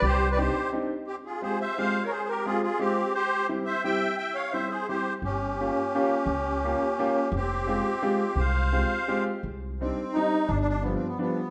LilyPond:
<<
  \new Staff \with { instrumentName = "Accordion" } { \time 3/4 \key c \minor \tempo 4 = 172 <g' c''>8. <b' d''>16 <g' c''>4 r4 | \key f \minor <c' g'>8 <f' aes'>8 <aes' c''>8 <c'' e''>8 <c'' f''>8. <bes' des''>16 | <aes' c''>8 <g' bes'>8 <f' aes'>8 <f' aes'>8 <c' g'>4 | <g' c''>4 r8 <c'' e''>8 <e'' g''>4 |
<e'' g''>8 <des'' f''>8 <c'' e''>8 <aes' c''>8 <g' c''>8. r16 | <des' g'>2.~ | <des' g'>2. | <c' g'>2. |
<c'' f''>2~ <c'' f''>8 r8 | \key c \minor r4 c'4 ees'4 | \tuplet 3/2 { d'8 d'8 d'8 b8 c'8 b8 } b4 | }
  \new Staff \with { instrumentName = "Upright piano" } { \time 3/4 \key c \minor r4 <c' d' ees' g'>8 r8 <c' d' ees' g'>8 r8 | \key f \minor r4 <aes c' f' g'>8 r8 <aes c' f' g'>8 r8 | r4 <aes c' f' g'>8 r8 <aes c' f' g'>8 r8 | r4 <g c' e' g'>8 r8 <g c' e' g'>8 r8 |
r4 <g c' e' g'>8 r8 <g c' e' g'>8 r8 | r4 <bes des' f' g'>8 r8 <bes des' f' g'>8 r8 | r4 <bes des' f' g'>8 r8 <bes des' f' g'>8 r8 | r4 <aes c' f' g'>8 r8 <aes c' f' g'>8 r8 |
r4 <aes c' f' g'>8 r8 <aes c' f' g'>8 r8 | \key c \minor r4 <g c' d' ees'>8 r8 <g c' d' ees'>8 r8 | r4 <f g b d'>8 r8 <f g b d'>8 r8 | }
  \new Staff \with { instrumentName = "Upright bass" } { \clef bass \time 3/4 \key c \minor c,2 r4 | \key f \minor r2. | r2. | r2. |
r2. | g,,2 r4 | des,2 r4 | f,,2 r4 |
c,2 r4 | \key c \minor c,2 r4 | g,,2 r4 | }
>>